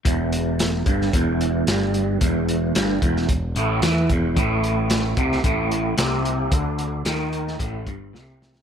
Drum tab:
HH |x-x-x-x-x-x-x-x-|x-x-x-x-x-x-x-x-|x-x-x-x-x-x-x-x-|x-x-x-x-x-x-----|
SD |----o--o----o---|----o--o----o---|----o--o----o---|----o--o----o-oo|
BD |o-----o-o-------|o-----o-o-----o-|o-----o-o-------|o-------o-o-----|